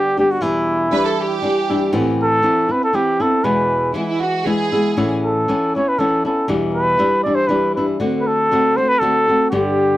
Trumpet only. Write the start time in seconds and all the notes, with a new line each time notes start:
Already playing: G4
0.19 G4
0.31 F#4
0.42 E4
2.23 A4
2.71 B4
2.84 A4
2.95 G4
3.21 A4
3.44 B4
5.25 A4
5.76 C#5
5.88 B4
5.99 A4
6.26 A4
6.75 B4
7.23 D5
7.35 C5
7.47 B4
7.75 B4
8.21 B4
8.27 A4
8.77 C5
8.88 B4
8.99 A4
9.50 G4